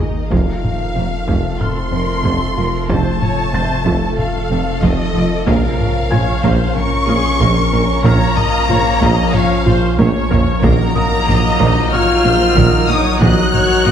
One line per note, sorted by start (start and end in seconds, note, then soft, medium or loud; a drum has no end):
0.00 0.31 G#1 medium
0.00 0.08 G#1 soft
0.00 0.28 D#3 medium
0.00 0.31 D#3 medium
0.00 0.27 A#3 medium
0.00 0.08 A#3 soft
0.00 0.31 D#4 medium
0.00 0.19 G#4 medium
0.00 0.27 A#4 medium
0.00 0.27 D#5 medium
0.00 taiko low medium
0.30 0.45 F1 medium
0.30 5.49 F1 medium
0.30 0.40 F1 medium
0.30 0.39 F2 medium
0.30 5.44 C3 medium
0.30 0.50 F3 medium
0.30 1.61 F3 medium
0.30 5.44 F3 medium
0.30 5.44 A3 medium
0.30 5.44 F4 medium
0.30 1.60 F5 medium
0.30 5.44 A5 medium
0.30 taiko medium
0.64 taiko low-mid medium
0.96 1.04 F1 medium
0.96 1.09 F1 soft
0.96 1.04 F2 soft
0.96 1.15 C4 medium
0.96 taiko low-mid medium
1.28 1.41 F1 medium
1.28 1.37 F1 medium
1.28 1.36 F2 medium
1.28 1.47 F3 medium
1.28 taiko medium
1.60 2.72 C4 medium
1.60 1.91 A4 medium
1.60 2.90 C6 medium
1.60 3.50 F6 soft
1.60 taiko low-mid medium
1.92 2.01 F1 medium
1.92 2.06 F1 medium
1.92 2.00 F2 soft
1.92 2.12 C4 medium
1.92 2.25 A#4 medium
2.25 2.38 F1 medium
2.25 2.34 F1 medium
2.25 2.33 F2 medium
2.25 2.44 F3 loud
2.25 2.57 A4 medium
2.25 taiko medium
2.57 2.66 F1 medium
2.57 2.71 F1 medium
2.57 2.65 F2 medium
2.57 2.77 F4 medium
2.57 2.89 A#4 medium
2.89 2.98 F1 medium
2.89 3.03 F1 medium
2.89 2.97 F2 medium
2.89 3.09 F3 medium
2.89 4.16 A3 medium
2.89 3.22 C5 medium
2.89 4.18 A5 medium
2.89 4.16 A5 loud
2.89 taiko loud
3.22 3.54 C#5 medium
3.22 taiko low-mid medium
3.54 3.67 F1 medium
3.54 3.63 F1 medium
3.54 3.62 F2 medium
3.54 3.74 C4 medium
3.54 3.86 C5 medium
3.54 5.44 A6 medium
3.54 taiko low-mid medium
3.85 3.94 F1 medium
3.85 3.99 F1 medium
3.85 3.93 F2 medium
3.85 4.06 F3 medium
3.85 5.45 A4 medium
3.85 taiko medium
4.18 4.84 F3 medium
4.18 4.82 F5 medium
4.18 taiko low-mid medium
4.50 4.59 F1 medium
4.50 4.64 F1 medium
4.50 4.58 F2 medium
4.50 4.70 C4 medium
4.82 4.91 F1 medium
4.82 4.96 F1 medium
4.82 4.91 F2 medium
4.82 5.48 D#3 medium
4.82 5.02 F3 loud
4.82 5.47 D#5 medium
4.82 5.47 D#5 loud
4.82 taiko medium
5.14 5.23 F1 medium
5.14 5.28 F1 medium
5.14 5.23 F2 medium
5.14 5.34 F4 medium
5.46 5.55 A#1 medium
5.46 10.63 A#1 medium
5.46 5.61 A#1 medium
5.46 5.55 A#2 medium
5.46 10.59 F3 medium
5.46 10.64 F3 medium
5.46 6.74 F3 medium
5.46 5.66 A#3 loud
5.46 10.59 C#4 medium
5.46 10.63 C#4 medium
5.46 10.59 F4 medium
5.46 6.11 A#4 medium
5.46 10.62 A#4 medium
5.46 6.77 F5 loud
5.46 6.74 F5 medium
5.46 taiko loud
5.80 taiko low-mid medium
6.11 6.20 A#1 medium
6.11 6.25 A#1 medium
6.11 6.19 A#2 medium
6.11 6.31 F4 medium
6.11 6.44 C#5 medium
6.11 8.01 G#5 soft
6.11 8.01 G#6 medium
6.11 taiko low-mid medium
6.43 6.52 A#1 medium
6.43 6.57 A#1 loud
6.43 6.51 A#2 loud
6.43 6.64 A#3 loud
6.43 6.77 C5 medium
6.43 taiko medium
6.76 8.06 C#4 loud
6.76 7.08 A#4 medium
6.76 8.06 C#6 loud
6.76 8.03 C#6 loud
6.76 taiko low-mid medium
7.08 7.16 A#1 medium
7.08 7.21 A#1 medium
7.08 7.16 A#2 medium
7.08 7.28 F4 medium
7.08 7.41 G#4 medium
7.40 7.54 A#1 loud
7.40 7.49 A#1 loud
7.40 7.49 A#2 medium
7.40 7.60 A#3 loud
7.40 8.05 A#4 medium
7.40 taiko medium
7.73 7.86 A#1 medium
7.73 7.81 A#1 medium
7.73 7.81 A#2 medium
7.73 7.93 A#4 medium
8.05 8.18 A#1 loud
8.05 8.14 A#1 loud
8.05 8.13 A#2 loud
8.05 8.25 A#3 loud
8.05 9.32 A#3 loud
8.05 8.37 C#5 loud
8.05 9.32 A#5 loud
8.05 9.95 F6 medium
8.05 taiko loud
8.37 8.70 D#5 loud
8.37 taiko low-mid medium
8.69 8.78 A#1 medium
8.69 8.83 A#1 medium
8.69 8.77 A#2 medium
8.69 8.89 F4 medium
8.69 9.01 C#5 medium
8.69 taiko low-mid medium
9.01 9.10 A#1 medium
9.01 9.15 A#1 loud
9.01 9.10 A#2 loud
9.01 9.22 A#3 loud
9.01 9.34 D#5 loud
9.01 taiko medium
9.34 9.99 F3 loud
9.34 9.67 C#5 loud
9.34 9.99 F5 loud
9.34 10.00 F5 medium
9.34 taiko low-mid medium
9.66 9.74 A#1 medium
9.66 9.80 A#1 medium
9.66 9.74 A#2 medium
9.66 9.86 F4 medium
9.66 9.99 C5 loud
9.66 taiko low-mid medium
9.99 10.07 A#1 loud
9.99 10.12 A#1 loud
9.99 10.07 A#2 medium
9.99 10.18 A#3 loud
9.99 10.62 C#5 loud
9.99 taiko high medium
10.31 10.39 A#1 medium
10.31 10.45 A#1 medium
10.31 10.39 A#2 medium
10.31 10.50 A#4 medium
10.31 taiko low loud
10.62 10.71 A#1 loud
10.62 10.77 A#1 loud
10.62 13.92 A#1 medium
10.62 10.71 A#2 loud
10.62 10.83 D#3 loud
10.62 13.92 D#3 loud
10.62 13.92 F#3 loud
10.62 13.92 F#3 medium
10.62 11.89 A#3 loud
10.62 13.92 D#4 medium
10.62 13.92 A#4 medium
10.62 11.28 A#4 loud
10.62 11.88 A#5 loud
10.62 11.89 A#5 loud
10.62 taiko loud
10.95 12.85 D#6 medium
10.95 taiko low-mid medium
11.27 11.36 A#1 medium
11.27 11.41 A#1 medium
11.27 11.35 A#2 medium
11.27 11.48 A#3 medium
11.27 11.93 D#5 loud
11.27 taiko low-mid medium
11.59 11.68 A#1 loud
11.59 11.73 A#1 loud
11.59 11.67 A#2 loud
11.59 11.79 D#3 loud
11.59 taiko medium
11.92 12.90 F4 loud
11.92 12.25 C#5 loud
11.92 12.87 F6 loud
11.92 12.88 F6 loud
11.92 13.83 F6 medium
11.92 taiko low-mid medium
12.24 12.37 A#1 medium
12.24 12.33 A#1 medium
12.24 12.32 A#2 medium
12.24 12.44 A#3 medium
12.24 12.57 C5 medium
12.56 12.70 A#1 loud
12.56 12.65 A#1 loud
12.56 12.64 A#2 loud
12.56 12.76 D#3 loud
12.56 12.90 A#4 medium
12.56 taiko medium
12.88 12.97 A#1 medium
12.88 13.02 A#1 medium
12.88 12.96 A#2 medium
12.88 13.08 D#4 medium
12.88 13.22 D#4 loud
12.88 13.22 C#5 medium
12.88 13.22 D#6 loud
13.21 13.29 A#1 loud
13.21 13.34 A#1 loud
13.21 13.29 A#2 loud
13.21 13.41 D#3 loud
13.21 13.92 F#4 loud
13.21 13.54 D#5 medium
13.21 13.92 F#6 loud
13.21 taiko loud
13.54 13.86 C#5 loud
13.54 taiko low-mid medium
13.86 13.92 A#1 medium
13.86 13.92 A#2 medium
13.86 13.92 A#3 medium
13.86 13.92 D#5 loud
13.86 taiko low-mid medium